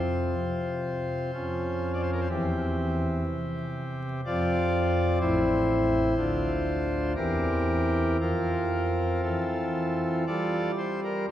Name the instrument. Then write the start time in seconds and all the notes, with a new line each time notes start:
pipe organ
Already playing: F2 F3 C4 F4 C5
0.37 C3
1.33 F2 F3 C#4 F4
1.94 D5
2.02 C5
2.13 A#4
2.20 C5
2.29 E2 E3 C4 G4
3.26 C3
4.25 F2 F3 C4 F4 D5
5.20 A1 A2 C4 E4 C5
6.17 D2 D3 D4 F4
7.16 E2 E3 C4 G4 A#4
8.20 F2 F3 C4 F4 A#4
9.23 E3 A4
10.27 G3 F4 A4 D5
10.78 C5
11.04 A#4